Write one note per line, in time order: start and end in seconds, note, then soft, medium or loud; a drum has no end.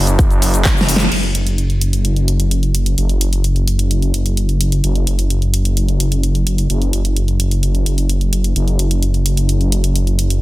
0.00 1.10 F#1 medium
0.07 closed hi-hat medium
0.07 shaker soft
0.19 kick loud
0.19 closed hi-hat medium
0.19 shaker soft
0.31 closed hi-hat soft
0.31 shaker soft
0.42 open hi-hat loud
0.42 shaker medium
0.54 closed hi-hat medium
0.54 shaker soft
0.65 kick loud
0.65 snare medium
0.65 clap loud
0.65 closed hi-hat medium
0.65 shaker soft
0.77 snare medium
0.77 closed hi-hat soft
0.77 shaker soft
0.89 open hi-hat loud
0.89 shaker medium
0.96 snare loud
0.96 closed hi-hat medium
1.01 shaker soft
1.12 2.95 F#1 medium
1.12 closed hi-hat soft
1.12 crash medium
1.23 closed hi-hat soft
1.35 closed hi-hat medium
1.47 closed hi-hat medium
1.58 closed hi-hat soft
1.70 closed hi-hat soft
1.81 closed hi-hat medium
1.93 closed hi-hat soft
2.05 closed hi-hat soft
2.16 closed hi-hat soft
2.28 closed hi-hat medium
2.40 closed hi-hat soft
2.51 closed hi-hat soft
2.63 closed hi-hat soft
2.75 closed hi-hat medium
2.86 closed hi-hat soft
2.98 4.82 F#1 medium
2.98 closed hi-hat soft
3.09 closed hi-hat soft
3.21 closed hi-hat medium
3.33 closed hi-hat soft
3.44 closed hi-hat soft
3.56 closed hi-hat soft
3.68 closed hi-hat medium
3.79 closed hi-hat soft
3.91 closed hi-hat soft
4.02 closed hi-hat soft
4.14 closed hi-hat medium
4.26 closed hi-hat soft
4.37 closed hi-hat soft
4.49 closed hi-hat soft
4.61 closed hi-hat medium
4.72 closed hi-hat soft
4.84 6.68 F#1 medium
4.84 closed hi-hat soft
4.96 closed hi-hat soft
5.07 closed hi-hat medium
5.19 closed hi-hat soft
5.30 closed hi-hat soft
5.42 closed hi-hat soft
5.54 closed hi-hat medium
5.65 closed hi-hat soft
5.77 closed hi-hat soft
5.89 closed hi-hat soft
6.00 closed hi-hat medium
6.12 closed hi-hat soft
6.23 closed hi-hat soft
6.35 closed hi-hat soft
6.47 closed hi-hat medium
6.58 closed hi-hat soft
6.70 8.54 F#1 medium
6.70 closed hi-hat soft
6.82 closed hi-hat soft
6.93 closed hi-hat medium
7.05 closed hi-hat soft
7.17 closed hi-hat soft
7.28 closed hi-hat soft
7.40 closed hi-hat medium
7.51 closed hi-hat soft
7.63 closed hi-hat soft
7.75 closed hi-hat soft
7.86 closed hi-hat medium
7.98 closed hi-hat soft
8.09 closed hi-hat soft
8.21 closed hi-hat soft
8.33 closed hi-hat medium
8.44 closed hi-hat soft
8.56 10.40 F#1 medium
8.56 closed hi-hat soft
8.68 closed hi-hat soft
8.79 closed hi-hat medium
8.91 closed hi-hat soft
9.03 closed hi-hat soft
9.14 closed hi-hat soft
9.26 closed hi-hat medium
9.37 closed hi-hat soft
9.49 closed hi-hat soft
9.61 closed hi-hat soft
9.72 closed hi-hat medium
9.84 closed hi-hat soft
9.96 closed hi-hat soft
10.07 closed hi-hat soft
10.19 closed hi-hat medium
10.30 closed hi-hat soft